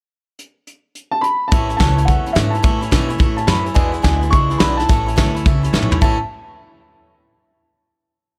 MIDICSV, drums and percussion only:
0, 0, Header, 1, 2, 480
1, 0, Start_track
1, 0, Key_signature, 3, "major"
1, 0, Tempo, 281690
1, 665, Time_signature, 4, 2, 24, 8
1, 14293, End_track
2, 0, Start_track
2, 0, Title_t, "Drums"
2, 663, Note_on_c, 9, 42, 63
2, 833, Note_off_c, 9, 42, 0
2, 1144, Note_on_c, 9, 42, 59
2, 1315, Note_off_c, 9, 42, 0
2, 1623, Note_on_c, 9, 42, 55
2, 1793, Note_off_c, 9, 42, 0
2, 2109, Note_on_c, 9, 42, 64
2, 2280, Note_off_c, 9, 42, 0
2, 2586, Note_on_c, 9, 42, 87
2, 2590, Note_on_c, 9, 36, 117
2, 2757, Note_off_c, 9, 42, 0
2, 2761, Note_off_c, 9, 36, 0
2, 2897, Note_on_c, 9, 42, 64
2, 3068, Note_off_c, 9, 42, 0
2, 3068, Note_on_c, 9, 36, 88
2, 3073, Note_on_c, 9, 38, 121
2, 3073, Note_on_c, 9, 42, 90
2, 3238, Note_off_c, 9, 36, 0
2, 3243, Note_off_c, 9, 38, 0
2, 3243, Note_off_c, 9, 42, 0
2, 3377, Note_on_c, 9, 42, 63
2, 3546, Note_on_c, 9, 36, 106
2, 3547, Note_off_c, 9, 42, 0
2, 3548, Note_on_c, 9, 42, 82
2, 3717, Note_off_c, 9, 36, 0
2, 3718, Note_off_c, 9, 42, 0
2, 3856, Note_on_c, 9, 42, 67
2, 4023, Note_off_c, 9, 42, 0
2, 4023, Note_on_c, 9, 38, 121
2, 4023, Note_on_c, 9, 42, 94
2, 4193, Note_off_c, 9, 38, 0
2, 4193, Note_off_c, 9, 42, 0
2, 4338, Note_on_c, 9, 42, 61
2, 4499, Note_on_c, 9, 36, 114
2, 4502, Note_off_c, 9, 42, 0
2, 4502, Note_on_c, 9, 42, 88
2, 4670, Note_off_c, 9, 36, 0
2, 4672, Note_off_c, 9, 42, 0
2, 4811, Note_on_c, 9, 42, 65
2, 4978, Note_on_c, 9, 36, 88
2, 4981, Note_off_c, 9, 42, 0
2, 4981, Note_on_c, 9, 38, 109
2, 4981, Note_on_c, 9, 42, 92
2, 5149, Note_off_c, 9, 36, 0
2, 5151, Note_off_c, 9, 38, 0
2, 5151, Note_off_c, 9, 42, 0
2, 5285, Note_on_c, 9, 42, 67
2, 5452, Note_off_c, 9, 42, 0
2, 5452, Note_on_c, 9, 36, 111
2, 5452, Note_on_c, 9, 42, 78
2, 5622, Note_off_c, 9, 42, 0
2, 5623, Note_off_c, 9, 36, 0
2, 5756, Note_on_c, 9, 42, 58
2, 5926, Note_off_c, 9, 42, 0
2, 5926, Note_on_c, 9, 38, 119
2, 5926, Note_on_c, 9, 42, 79
2, 6096, Note_off_c, 9, 38, 0
2, 6096, Note_off_c, 9, 42, 0
2, 6242, Note_on_c, 9, 42, 55
2, 6408, Note_off_c, 9, 42, 0
2, 6408, Note_on_c, 9, 42, 78
2, 6410, Note_on_c, 9, 36, 112
2, 6579, Note_off_c, 9, 42, 0
2, 6581, Note_off_c, 9, 36, 0
2, 6711, Note_on_c, 9, 42, 61
2, 6881, Note_off_c, 9, 42, 0
2, 6889, Note_on_c, 9, 38, 120
2, 6889, Note_on_c, 9, 42, 90
2, 6891, Note_on_c, 9, 36, 86
2, 7059, Note_off_c, 9, 38, 0
2, 7059, Note_off_c, 9, 42, 0
2, 7061, Note_off_c, 9, 36, 0
2, 7204, Note_on_c, 9, 42, 70
2, 7374, Note_off_c, 9, 42, 0
2, 7375, Note_on_c, 9, 36, 106
2, 7376, Note_on_c, 9, 42, 84
2, 7546, Note_off_c, 9, 36, 0
2, 7546, Note_off_c, 9, 42, 0
2, 7683, Note_on_c, 9, 42, 62
2, 7841, Note_off_c, 9, 42, 0
2, 7841, Note_on_c, 9, 38, 126
2, 7841, Note_on_c, 9, 42, 92
2, 8012, Note_off_c, 9, 38, 0
2, 8012, Note_off_c, 9, 42, 0
2, 8172, Note_on_c, 9, 38, 34
2, 8172, Note_on_c, 9, 42, 65
2, 8333, Note_off_c, 9, 42, 0
2, 8333, Note_on_c, 9, 42, 94
2, 8340, Note_on_c, 9, 36, 112
2, 8343, Note_off_c, 9, 38, 0
2, 8504, Note_off_c, 9, 42, 0
2, 8511, Note_off_c, 9, 36, 0
2, 8660, Note_on_c, 9, 42, 65
2, 8822, Note_on_c, 9, 36, 85
2, 8825, Note_off_c, 9, 42, 0
2, 8825, Note_on_c, 9, 38, 122
2, 8825, Note_on_c, 9, 42, 89
2, 8993, Note_off_c, 9, 36, 0
2, 8995, Note_off_c, 9, 38, 0
2, 8995, Note_off_c, 9, 42, 0
2, 9143, Note_on_c, 9, 42, 62
2, 9299, Note_off_c, 9, 42, 0
2, 9299, Note_on_c, 9, 42, 75
2, 9302, Note_on_c, 9, 36, 110
2, 9469, Note_off_c, 9, 42, 0
2, 9473, Note_off_c, 9, 36, 0
2, 9616, Note_on_c, 9, 42, 60
2, 9774, Note_on_c, 9, 38, 66
2, 9786, Note_off_c, 9, 42, 0
2, 9925, Note_on_c, 9, 47, 74
2, 9945, Note_off_c, 9, 38, 0
2, 10086, Note_on_c, 9, 43, 97
2, 10095, Note_off_c, 9, 47, 0
2, 10256, Note_off_c, 9, 43, 0
2, 10256, Note_on_c, 9, 36, 97
2, 10426, Note_off_c, 9, 36, 0
2, 14293, End_track
0, 0, End_of_file